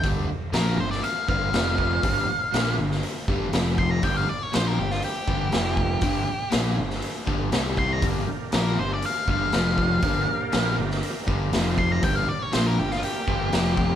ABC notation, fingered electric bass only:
X:1
M:4/4
L:1/8
Q:1/4=120
K:Gm
V:1 name="Fingered electric bass" clef=bass
G,,, z B,,, G,,, z G,,, F,,,2 | G,,, z B,,, G,,, z G,,, F,,,2 | G,,, z B,,, G,,, z G,,, F,,,2 | G,,, z B,,, G,,, z G,,, C,,2 |
G,,, z B,,, G,,, z G,,, F,,,2 | G,,, z B,,, G,,, z G,,, F,,,2 | G,,, z B,,, G,,, z G,,, F,,,2 |]